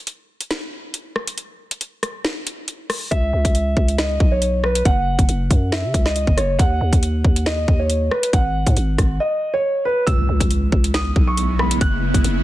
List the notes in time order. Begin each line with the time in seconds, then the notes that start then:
0.07 closed hi-hat
0.41 closed hi-hat
0.51 snare, closed hi-hat
0.94 closed hi-hat
1.16 cross-stick
1.27 closed hi-hat
1.38 closed hi-hat
1.71 closed hi-hat
1.81 closed hi-hat
2.03 cross-stick, closed hi-hat
2.25 snare
2.47 closed hi-hat
2.68 closed hi-hat
2.90 cross-stick, open hi-hat
3.11 C#2 E5, kick, closed hi-hat
3.33 C#2
3.45 C#2, kick, closed hi-hat
3.55 closed hi-hat
3.77 C#2, kick
3.88 closed hi-hat
3.98 D#5, snare, closed hi-hat
4.20 B1, kick
4.32 C#5
4.42 closed hi-hat
4.64 B4, cross-stick
4.75 closed hi-hat
4.85 F#1 F#5, kick, closed hi-hat
5.19 F#1, kick, closed hi-hat
5.29 F#1, closed hi-hat
5.51 F#2, kick, closed hi-hat
5.72 E5, snare
5.84 C#3
5.94 C#2, kick, closed hi-hat
6.06 D#5, snare
6.16 closed hi-hat
6.27 F#1, kick
6.37 F#1 C#5, cross-stick, closed hi-hat
6.59 D#2 F#5, kick, closed hi-hat
6.81 D#2
6.93 D#2, kick, closed hi-hat
7.03 closed hi-hat
7.24 D#2, kick
7.36 closed hi-hat
7.46 D#5, snare, closed hi-hat
7.68 D#2, kick
7.79 C#5
7.90 closed hi-hat
8.11 B4, cross-stick
8.23 closed hi-hat
8.33 G#1 F#5, kick, closed hi-hat
8.67 G#2, kick, closed hi-hat
8.77 G#1, closed hi-hat
8.98 G#1, kick, cross-stick, closed hi-hat
9.20 D#5
9.54 C#5
9.85 B4
10.07 C#2 C#3 G#3 B3 E4 E6, kick, closed hi-hat, impact
10.29 C#2
10.40 C#2, kick, closed hi-hat
10.51 closed hi-hat
10.72 C#2, kick
10.84 closed hi-hat
10.94 D#6, snare, closed hi-hat
11.16 B1, kick
11.27 C#6
11.37 closed hi-hat
11.59 B5, cross-stick
11.71 closed hi-hat
11.81 F#1 F#3 A#3 F#6, kick, closed hi-hat
12.14 F#1, kick, closed hi-hat
12.24 F#1, closed hi-hat